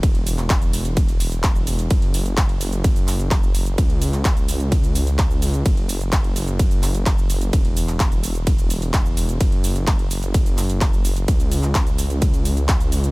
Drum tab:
RD |x---x---x---x---|x---x---x---x---|x---x---x---x---|x---x---x---x---|
HH |xxoxxxoxxxoxx-ox|xxoxxxoxxxoxx-ox|xxoxxxoxxxoxx-ox|xxoxxxoxxxoxx-ox|
SH |x-xxxxxxxxxxxxxx|x-xxx-xxxxxxxxxx|x-xxxxxxxxxxxxxx|x-xxx-xxxxxxxxxx|
CP |---xx-------x---|----x-----x-x---|---xx-------x---|----x-----x-x---|
BD |o---o---o---o---|o---o---o---o---|o---o---o---o---|o---o---o---o---|

RD |x---x---x---x---|x---x---x---x---|x---x---x---x---|
HH |xxoxxxoxxxoxx-ox|xxoxxxoxxxoxx-ox|xxoxxxoxxxoxxxox|
SH |x-xxxxxxxxxxxxxx|x-xxx-xxxxxxxxxx|xxxxxxxxxxxxxxxx|
CP |---xx-------x---|----x-----x-x---|---xx-------x---|
BD |o---o---o---o---|o---o---o---o---|o---o---o---o---|